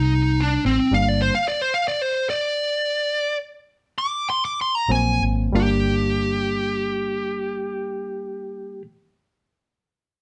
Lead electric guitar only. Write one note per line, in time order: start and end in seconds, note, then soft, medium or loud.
0.00 0.42 D#4 medium
0.40 0.65 D4 medium
0.66 0.93 C4 medium
0.94 1.08 F5 loud
1.08 1.20 D5 medium
1.22 1.33 C5 medium
1.35 1.46 F5 medium
1.48 1.60 D5 medium
1.61 1.73 C5 medium
1.74 1.86 F5 medium
1.88 2.02 D5 medium
2.02 2.27 C5 medium
2.30 3.37 D5 medium
3.98 4.27 D6 medium
4.30 4.43 C6 medium
4.45 4.59 D6 medium
4.61 4.75 C6 medium
4.75 4.89 A#5 medium
4.92 5.21 G#5 medium
5.56 8.82 G4 medium